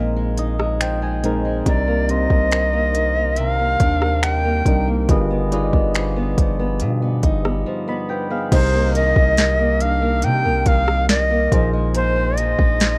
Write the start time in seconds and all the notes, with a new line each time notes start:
Already playing: A#1 A#2 F3 G#3 C4 D#4 A#4
0.16 G#3
0.37 D#4 D#5, closed hi-hat
0.59 G#3, cross-stick
0.80 F3 G5, finger snap, closed hi-hat
1.02 G#3 G#5
1.23 A#2 F3 G#3 C4 D#4 A#4, closed hi-hat
1.45 G#3
1.66 C2 C3 G3 D4 D#4 A#4 D5, kick, closed hi-hat
1.87 A#3
2.09 C3 G3 C4 D#4 C5 D#5, closed hi-hat
2.30 C2 A#3, kick
2.52 D#3, finger snap, closed hi-hat
2.73 A#3
2.95 D#3, closed hi-hat
3.16 A#3
3.37 C3 E5, closed hi-hat
3.49 F5
3.59 A#3
3.80 D#2 D4, kick, closed hi-hat
4.02 A#3, cross-stick
4.23 D#3 G5, finger snap, closed hi-hat
4.45 A#3
4.66 C2 C3 D#3 G3 D4 D#4 A#4, kick, closed hi-hat
4.88 A#3
5.09 G1 G2 D3 G3 F4 G#4 B4 D#5, kick, closed hi-hat
5.30 B3
5.52 G3 D#4 F4 G#4 B4 D5 D#5, closed hi-hat
5.73 G1 B3, kick
5.94 F3, finger snap, closed hi-hat
6.16 B3
6.38 G1 F3, kick, closed hi-hat
6.59 B3
6.79 G2 B2, closed hi-hat
7.02 B3
7.23 G1 D#4, kick, closed hi-hat
7.45 B3, cross-stick
7.66 F3
7.88 B3 D#5 B5
8.09 F3 B4 G5
8.30 B3 G#4 F5
8.52 C2 C3 G3 D#4 A#4 C5 D#5, kick, closed hi-hat, crash
8.73 A#3
8.95 D#3 D#5, closed hi-hat
9.16 C2, kick
9.37 D#3, snare, closed hi-hat
9.59 A#3
9.80 D4 F5, closed hi-hat
10.02 A#3
10.22 C3 G5, closed hi-hat
10.45 C2 A#3
10.66 C2 D#3 F5, kick, closed hi-hat
10.88 cross-stick
11.09 D#3 D#5, snare, closed hi-hat
11.30 A#3
11.52 A#1 A#2 F3 D#4 G#4 C5, kick, closed hi-hat
11.73 G#3
11.95 A#2 C5, closed hi-hat
12.16 G#3
12.38 F3 D#5, closed hi-hat
12.59 A#1 D#4, kick
12.80 F3, snare, closed hi-hat